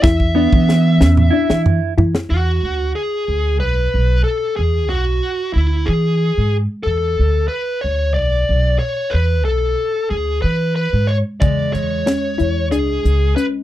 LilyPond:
<<
  \new Staff \with { instrumentName = "Lead electric guitar" } { \time 7/8 \key e \mixolydian \tempo 4 = 92 e''2~ e''8 r4 | fis'4 gis'4 b'4 a'8 | gis'8 fis'4 e'8 gis'4 r8 | a'4 b'8 cis''8 d''4 cis''8 |
b'8 a'4 gis'8 b'8 b'8 cis''8 | d''8 cis''4. gis'4 b'8 | }
  \new Staff \with { instrumentName = "Synth arpeggio sound" } { \time 7/8 \key e \mixolydian e'8 d'4 cis'8 d'4 e'8 | r2. r8 | r2. r8 | r2. r8 |
r2. r8 | cis4 cis'8 e'8 d'4 cis'8 | }
  \new Staff \with { instrumentName = "Clean electric guitar" } { \time 7/8 \key e \mixolydian cis'8 b4. e'4 r8 | r2. r8 | r2. r8 | r2. r8 |
r2. r8 | gis2.~ gis8 | }
  \new Staff \with { instrumentName = "Upright bass" } { \clef bass \time 7/8 \key e \mixolydian e,8. e8. e,8 r16 e8 r16 e16 r16 | e,8 d,8 r8 d,8 b,,8 b,,8 r8 | e,8 b,,8 r8 d,8 e8. gis,8 r16 | e,8 d,8 r8 d,8 b,,8 b,,8 r8 |
e,8 b,,8 r8 d,8 e8. gis,8 r16 | e,8 e,8 r8 e,8 cis,8 cis,8 r8 | }
  \new DrumStaff \with { instrumentName = "Drums" } \drummode { \time 7/8 <bd sn>16 bd8 bd16 sn8 sn16 toml16 r16 sn16 tomfh8 tomfh16 sn16 | r4 r4 r4. | r4 r4 r4. | r4 r4 r4. |
r4 r4 r4. | <hh bd>8 hh8 <hh sn>8 hh8 hh8 hh8 hh8 | }
>>